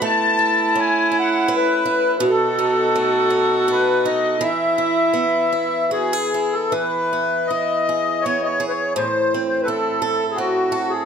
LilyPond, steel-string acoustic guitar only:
\new Staff \with { instrumentName = "Steel-string acoustic guitar" } { \time 3/4 \key e \major \tempo 4 = 82 a8 e'8 cis'8 e'8 b'8 e'8 | b,8 dis'8 a8 dis'8 a'8 dis'8 | e8 e'8 b8 e'8 fis'16 gis'16 e'8 | e8 b8 e'8 gis'8 b8 gis'8 |
a,8 c'8 e'8 a'8 c'8 a'8 | }